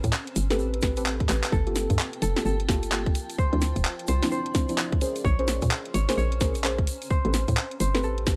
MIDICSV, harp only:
0, 0, Header, 1, 2, 480
1, 0, Start_track
1, 0, Tempo, 465116
1, 1573, Time_signature, 4, 2, 24, 8
1, 8630, End_track
2, 0, Start_track
2, 0, Title_t, "Harp"
2, 0, Program_c, 0, 46
2, 1572, Note_on_c, 0, 69, 91
2, 2288, Note_off_c, 0, 69, 0
2, 2292, Note_on_c, 0, 69, 82
2, 2529, Note_off_c, 0, 69, 0
2, 2533, Note_on_c, 0, 69, 84
2, 3492, Note_on_c, 0, 72, 92
2, 4209, Note_off_c, 0, 72, 0
2, 4213, Note_on_c, 0, 72, 82
2, 4450, Note_off_c, 0, 72, 0
2, 4454, Note_on_c, 0, 72, 81
2, 4800, Note_off_c, 0, 69, 0
2, 5414, Note_on_c, 0, 73, 93
2, 5476, Note_off_c, 0, 72, 0
2, 6128, Note_off_c, 0, 73, 0
2, 6133, Note_on_c, 0, 73, 81
2, 6368, Note_off_c, 0, 73, 0
2, 6372, Note_on_c, 0, 73, 83
2, 7331, Note_on_c, 0, 72, 93
2, 7393, Note_off_c, 0, 73, 0
2, 8047, Note_off_c, 0, 72, 0
2, 8051, Note_on_c, 0, 72, 81
2, 8292, Note_on_c, 0, 69, 82
2, 8630, Note_off_c, 0, 69, 0
2, 8630, Note_off_c, 0, 72, 0
2, 8630, End_track
0, 0, End_of_file